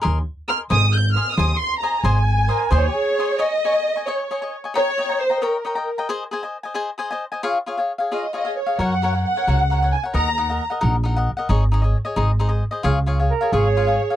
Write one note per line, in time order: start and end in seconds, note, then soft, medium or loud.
0.02 0.20 D#2 loud
0.02 0.17 A#4 medium
0.02 0.18 D#5 medium
0.02 0.18 G#5 medium
0.02 0.18 C6 loud
0.48 0.62 A#4 soft
0.48 0.62 D#5 soft
0.48 0.63 G#5 medium
0.48 0.63 C6 medium
0.48 0.59 F6 loud
0.70 1.14 G#1 medium
0.70 0.85 C5 medium
0.70 0.85 D#5 medium
0.70 0.85 G#5 medium
0.70 0.85 C6 medium
0.70 0.93 D#6 loud
0.93 1.16 G6 loud
1.13 1.29 C5 medium
1.13 1.29 D#5 medium
1.13 1.30 G#5 medium
1.13 1.30 C6 medium
1.13 1.35 F6 loud
1.34 1.53 D#2 loud
1.34 1.51 C5 medium
1.34 1.59 D#6 medium
1.39 1.52 D#5 medium
1.39 1.52 G#5 medium
1.39 1.52 C6 medium
1.57 1.80 C6 loud
1.79 1.96 C5 medium
1.79 2.01 A#5 medium
1.83 1.96 D#5 medium
1.83 1.96 G#5 medium
1.83 1.97 C6 medium
2.02 2.47 G#1 medium
2.02 2.18 C5 medium
2.02 2.18 D#5 medium
2.02 2.94 G#5 medium
2.02 2.19 G#5 medium
2.02 2.18 C6 medium
2.48 2.72 A#4 medium
2.48 2.62 C5 medium
2.48 2.62 D#5 medium
2.48 2.63 G#5 medium
2.48 2.63 C6 medium
2.70 2.87 D#2 loud
2.70 2.87 C5 loud
2.70 2.85 C5 medium
2.70 2.85 D#5 medium
2.70 2.86 G#5 medium
2.70 2.86 C6 medium
2.75 3.37 C#5 loud
2.88 2.95 G4 medium
2.94 3.39 G#4 medium
3.19 3.31 C5 soft
3.19 3.32 D#5 medium
3.19 3.32 G#5 soft
3.19 3.32 C6 medium
3.39 3.53 C#5 medium
3.39 3.53 D#5 medium
3.39 4.08 D#5 loud
3.39 3.53 G#5 medium
3.39 3.54 C#6 medium
3.65 3.75 C#5 medium
3.65 3.74 D#5 medium
3.65 3.74 G#5 medium
3.65 3.72 C#6 medium
3.74 3.88 D#5 soft
3.74 3.88 G#5 soft
3.74 3.87 C#6 soft
3.96 4.06 D#5 soft
3.96 4.07 G#5 soft
3.96 4.07 C#6 medium
4.07 4.21 C#5 medium
4.07 4.53 C#5 medium
4.07 4.22 D#5 medium
4.07 4.22 G#5 medium
4.07 4.22 C#6 medium
4.31 4.42 C#5 soft
4.31 4.42 D#5 medium
4.31 4.41 G#5 medium
4.31 4.41 C#6 medium
4.42 4.56 D#5 soft
4.42 4.55 G#5 soft
4.42 4.55 C#6 medium
4.64 4.74 D#5 soft
4.64 4.75 G#5 soft
4.64 4.75 C#6 soft
4.74 4.89 C#5 medium
4.74 5.18 C#5 loud
4.74 4.89 D#5 medium
4.74 4.89 G5 medium
4.74 4.89 A#5 medium
4.98 5.09 C#5 medium
4.98 5.09 D#5 medium
4.98 5.09 G5 medium
4.98 5.08 A#5 medium
5.09 5.23 D#5 soft
5.09 5.23 G5 soft
5.09 5.22 A#5 soft
5.21 5.43 C5 loud
5.30 5.41 D#5 soft
5.30 5.42 G5 soft
5.30 5.42 A#5 soft
5.42 5.93 A#4 medium
5.42 5.56 C#5 medium
5.42 5.56 D#5 medium
5.42 5.56 G5 medium
5.42 5.57 A#5 medium
5.65 5.76 C#5 medium
5.65 5.76 D#5 medium
5.65 5.75 G5 medium
5.65 5.74 A#5 medium
5.75 5.90 D#5 soft
5.75 5.89 G5 medium
5.75 5.89 A#5 medium
5.98 6.09 D#5 soft
5.98 6.09 G5 medium
5.98 6.09 A#5 medium
6.09 6.23 G#4 medium
6.09 6.23 C5 medium
6.09 6.23 D#5 medium
6.09 6.23 G#5 loud
6.31 6.43 G#4 medium
6.31 6.43 C5 medium
6.31 6.42 D#5 medium
6.31 6.42 G#5 medium
6.43 6.57 C5 soft
6.43 6.57 D#5 soft
6.43 6.56 G#5 soft
6.63 6.74 C5 soft
6.63 6.74 D#5 soft
6.63 6.74 G#5 medium
6.74 6.89 G#4 medium
6.74 6.89 C5 medium
6.74 6.90 D#5 medium
6.74 6.90 G#5 medium
6.98 7.10 G#4 medium
6.98 7.10 C5 medium
6.98 7.11 D#5 medium
6.98 7.09 G#5 medium
7.11 7.25 C5 medium
7.11 7.24 D#5 soft
7.11 7.24 G#5 medium
7.32 7.43 C5 soft
7.32 7.43 D#5 soft
7.32 7.43 G#5 soft
7.43 7.57 F4 medium
7.43 7.58 G#4 medium
7.43 7.58 C#5 medium
7.43 7.57 F5 medium
7.66 7.78 F4 medium
7.66 7.78 G#4 medium
7.66 7.77 C#5 medium
7.66 7.76 F5 medium
7.77 7.92 G#4 soft
7.77 7.92 C#5 soft
7.77 7.91 F5 medium
7.98 8.10 G#4 soft
7.98 8.11 C#5 soft
7.98 8.10 F5 soft
8.12 8.26 F4 medium
8.12 8.25 G#4 medium
8.12 8.26 C#5 medium
8.12 8.34 D#5 medium
8.12 8.26 F5 medium
8.33 8.45 F4 medium
8.33 8.45 G#4 soft
8.33 8.45 C#5 medium
8.33 8.56 D#5 medium
8.33 8.44 F5 medium
8.45 8.60 G#4 soft
8.45 8.59 C#5 soft
8.45 8.59 F5 medium
8.58 8.78 C#5 medium
8.66 8.78 G#4 soft
8.66 8.78 C#5 soft
8.66 8.78 F5 soft
8.79 9.23 F#2 medium
8.79 8.93 F#4 medium
8.79 8.93 A#4 medium
8.79 8.94 C#5 medium
8.79 9.23 F#5 medium
8.79 8.94 F#5 medium
9.02 9.13 F#4 soft
9.02 9.14 A#4 medium
9.02 9.13 C#5 medium
9.02 9.12 F#5 medium
9.13 9.28 A#4 soft
9.13 9.27 C#5 soft
9.13 9.27 F#5 soft
9.25 9.89 F#5 medium
9.36 9.46 A#4 soft
9.36 9.47 C#5 soft
9.36 9.47 F#5 soft
9.47 9.91 C#2 medium
9.47 9.61 F#4 medium
9.47 9.61 A#4 medium
9.47 9.62 C#5 medium
9.47 9.62 F#5 medium
9.70 9.81 F#4 medium
9.70 9.82 A#4 medium
9.70 9.82 C#5 medium
9.70 9.81 F#5 medium
9.82 9.96 A#4 soft
9.82 9.96 C#5 soft
9.82 9.95 F#5 soft
9.92 10.02 G#5 medium
10.03 10.12 A#4 soft
10.03 10.15 C#5 soft
10.03 10.13 F#5 soft
10.14 10.58 D#2 medium
10.14 10.28 D#4 medium
10.14 10.28 A#4 medium
10.14 10.29 D#5 medium
10.14 10.29 F#5 medium
10.14 10.62 A#5 loud
10.38 10.49 D#4 medium
10.38 10.49 A#4 medium
10.38 10.49 D#5 medium
10.38 10.48 F#5 medium
10.50 10.63 A#4 soft
10.50 10.63 D#5 soft
10.50 10.63 F#5 soft
10.70 10.80 A#4 soft
10.70 10.80 D#5 soft
10.70 10.80 F#5 medium
10.81 11.26 A#1 medium
10.81 10.95 D#4 medium
10.81 10.96 A#4 medium
10.81 10.95 D#5 medium
10.81 10.95 F#5 medium
11.03 11.15 D#4 medium
11.03 11.16 A#4 medium
11.03 11.16 D#5 medium
11.03 11.15 F#5 medium
11.16 11.30 A#4 soft
11.16 11.30 D#5 medium
11.16 11.30 F#5 medium
11.37 11.49 A#4 soft
11.37 11.49 D#5 medium
11.37 11.48 F#5 medium
11.49 11.93 G#1 medium
11.49 11.63 D#4 medium
11.49 11.63 G#4 medium
11.49 11.63 C#5 medium
11.49 11.64 D#5 medium
11.72 11.83 D#4 medium
11.72 11.83 G#4 medium
11.72 11.83 C#5 medium
11.72 11.81 D#5 medium
11.82 11.97 G#4 soft
11.82 11.97 C#5 soft
11.82 11.96 D#5 soft
12.05 12.15 G#4 soft
12.05 12.17 C#5 soft
12.05 12.16 D#5 medium
12.16 12.61 G#1 medium
12.16 12.30 D#4 medium
12.16 12.30 G#4 medium
12.16 12.31 C5 medium
12.16 12.31 D#5 medium
12.39 12.51 D#4 medium
12.39 12.48 G#4 medium
12.39 12.48 C5 medium
12.39 12.47 D#5 medium
12.49 12.63 G#4 soft
12.49 12.63 C5 medium
12.49 12.63 D#5 medium
12.71 12.83 G#4 soft
12.71 12.84 C5 medium
12.71 12.83 D#5 medium
12.83 13.28 C#2 medium
12.83 12.98 F4 medium
12.83 12.98 G#4 loud
12.83 12.98 C#5 medium
12.83 12.99 F5 loud
13.06 13.18 F4 medium
13.06 13.19 G#4 medium
13.06 13.19 C#5 medium
13.06 13.18 F5 medium
13.19 13.33 G#4 soft
13.19 13.33 C#5 soft
13.19 13.33 F5 soft
13.30 13.54 A#4 medium
13.41 13.52 G#4 soft
13.41 13.52 C#5 medium
13.41 13.52 F5 medium
13.52 13.97 G#1 medium
13.52 13.67 F4 medium
13.52 14.16 G#4 medium
13.52 13.67 G#4 medium
13.52 13.67 C#5 medium
13.52 14.16 C#5 medium
13.52 13.67 F5 medium
13.77 13.88 F4 medium
13.77 13.87 G#4 medium
13.77 13.87 C#5 medium
13.77 13.86 F5 medium
13.87 14.01 G#4 soft
13.87 14.01 C#5 medium
13.87 14.01 F5 medium
14.10 14.16 G#4 soft
14.10 14.16 C#5 soft
14.10 14.16 F5 soft